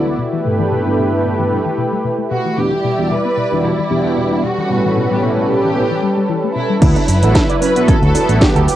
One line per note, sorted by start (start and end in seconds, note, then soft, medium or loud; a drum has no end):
0.00 0.17 D3 medium
0.00 0.14 B3 medium
0.00 0.17 B3 medium
0.00 0.17 E4 medium
0.00 0.18 E4 medium
0.00 2.53 E4 medium
0.00 0.16 F#4 medium
0.00 0.17 F#4 medium
0.00 0.17 A4 loud
0.00 0.17 D5 medium
0.06 0.09 A3 medium
0.19 0.26 B2 medium
0.19 2.55 A3 medium
0.19 2.55 G4 medium
0.19 2.55 B4 medium
0.33 0.39 E3 medium
0.44 0.82 G2 medium
0.44 0.50 B2 medium
0.44 0.82 B3 medium
0.44 0.82 D4 medium
0.44 0.83 E4 medium
0.44 0.83 A4 medium
0.60 0.62 E3 loud
0.72 0.79 B2 medium
0.85 1.35 G2 medium
0.85 0.90 G3 medium
0.85 1.35 B3 medium
0.85 1.36 D4 medium
0.85 1.36 E4 medium
0.85 1.36 A4 medium
0.98 1.03 B2 medium
1.13 1.15 A3 medium
1.25 1.32 B2 medium
1.39 1.58 G2 medium
1.39 1.45 E3 medium
1.39 1.59 B3 medium
1.39 1.59 D4 medium
1.39 1.59 E4 medium
1.39 1.59 A4 medium
1.51 1.56 B2 medium
1.66 1.68 E3 loud
1.78 1.85 B2 medium
1.92 1.97 G3 medium
2.05 2.10 B2 medium
2.19 2.21 A3 medium
2.31 2.39 B2 medium
2.31 2.56 F#4 medium
2.46 2.52 E3 medium
2.57 2.63 B2 medium
2.57 2.71 E3 medium
2.57 6.79 G3 medium
2.57 2.71 B3 medium
2.57 2.71 D4 medium
2.57 4.42 E4 medium
2.57 2.71 F#4 medium
2.57 3.11 G4 loud
2.57 2.71 G4 medium
2.57 4.42 D5 medium
2.72 2.75 E3 loud
2.84 2.92 B2 loud
2.98 3.10 E3 medium
2.98 3.03 G3 medium
2.98 3.10 B3 medium
2.98 3.10 D4 medium
2.98 3.10 F#4 medium
2.98 3.10 G4 loud
3.11 3.16 B2 medium
3.11 3.64 B4 loud
3.25 3.28 B3 medium
3.37 3.45 B2 medium
3.51 3.71 E3 medium
3.51 3.58 E3 medium
3.51 3.71 B3 medium
3.51 3.71 D4 medium
3.51 3.71 F#4 medium
3.51 3.71 G4 loud
3.64 3.69 B2 medium
3.64 4.43 E4 medium
3.79 3.81 E3 loud
3.89 3.98 B2 medium
3.89 4.41 E3 medium
3.89 4.41 B3 medium
3.89 4.42 D4 medium
3.89 4.42 F#4 medium
3.89 4.42 G4 loud
4.05 4.09 G3 medium
4.17 4.22 B2 medium
4.31 4.34 B3 medium
4.43 4.51 B2 medium
4.43 6.80 C#4 medium
4.43 5.14 F#4 medium
4.43 6.80 A4 medium
4.43 6.80 B4 medium
4.58 4.64 E3 medium
4.69 5.07 A2 medium
4.69 4.75 B2 medium
4.69 5.07 G3 medium
4.69 5.07 B3 medium
4.69 5.07 C#4 medium
4.69 5.07 E4 medium
4.85 4.87 E3 loud
4.97 5.04 B2 medium
5.10 5.60 A2 medium
5.10 5.15 G3 medium
5.10 5.60 B3 medium
5.10 5.60 C#4 medium
5.10 5.61 E4 medium
5.10 5.61 G4 medium
5.10 5.22 G4 medium
5.22 5.28 B2 medium
5.22 5.32 F#4 medium
5.31 5.41 E4 medium
5.37 5.40 A3 medium
5.37 5.49 F#4 medium
5.49 5.57 B2 medium
5.49 6.29 G4 medium
5.63 5.83 A2 medium
5.63 5.70 E3 medium
5.63 5.83 B3 medium
5.63 5.83 C#4 medium
5.63 5.83 E4 medium
5.63 5.83 G4 medium
5.76 5.81 B2 medium
5.91 5.93 E3 medium
6.03 6.08 G3 loud
6.17 6.21 G3 medium
6.29 6.37 E3 loud
6.44 6.48 A3 medium
6.55 6.61 B2 medium
6.55 6.80 E4 loud
6.70 6.73 G3 loud
6.81 6.94 D2 loud
6.81 8.66 F#3 medium
6.81 6.95 B3 medium
6.81 6.86 D4 medium
6.81 6.95 E4 medium
6.81 8.66 E4 medium
6.81 7.58 E4 medium
6.81 6.96 F#4 medium
6.81 6.96 A4 medium
6.81 8.66 B4 medium
6.81 kick loud
6.81 closed hi-hat medium
6.81 crash loud
6.81 shaker soft
6.96 7.06 D4 loud
6.96 closed hi-hat soft
6.96 shaker soft
7.08 7.20 F#2 medium
7.08 7.13 D4 medium
7.08 open hi-hat loud
7.08 shaker medium
7.22 7.33 A1 medium
7.22 7.34 B3 loud
7.22 7.29 D4 medium
7.22 7.35 E4 medium
7.22 7.35 F#4 medium
7.22 7.35 A4 loud
7.22 closed hi-hat medium
7.22 shaker soft
7.35 7.40 A4 medium
7.35 kick loud
7.35 snare loud
7.35 closed hi-hat medium
7.35 shaker soft
7.50 7.56 D5 medium
7.50 closed hi-hat soft
7.50 shaker soft
7.62 7.72 C#4 loud
7.62 7.88 B4 loud
7.62 open hi-hat medium
7.62 shaker medium
7.75 7.95 B3 loud
7.75 7.82 D4 medium
7.75 7.96 E4 medium
7.75 7.96 F#4 medium
7.75 7.96 A4 loud
7.75 closed hi-hat medium
7.75 shaker soft
7.88 7.95 C#4 medium
7.88 8.41 A4 loud
7.88 muted fingered electric bass stroke soft
7.88 kick loud
7.88 closed hi-hat medium
7.88 shaker soft
8.02 8.12 D2 loud
8.02 8.09 F#4 medium
8.02 closed hi-hat soft
8.02 shaker soft
8.14 8.66 B3 loud
8.14 8.19 D4 medium
8.14 8.66 E4 medium
8.14 8.66 F#4 medium
8.14 8.67 A4 loud
8.14 open hi-hat loud
8.14 shaker medium
8.29 8.39 A1 medium
8.29 8.35 D4 medium
8.29 closed hi-hat medium
8.29 shaker soft
8.41 8.49 D4 medium
8.41 8.76 G4 medium
8.41 kick loud
8.41 snare loud
8.41 closed hi-hat medium
8.41 shaker soft
8.56 8.66 D2 medium
8.56 8.62 A4 medium
8.56 closed hi-hat soft
8.56 shaker soft
8.68 8.76 A3 medium
8.68 8.76 E4 medium
8.68 8.72 G4 medium
8.68 8.76 B4 medium
8.68 open hi-hat medium
8.68 shaker medium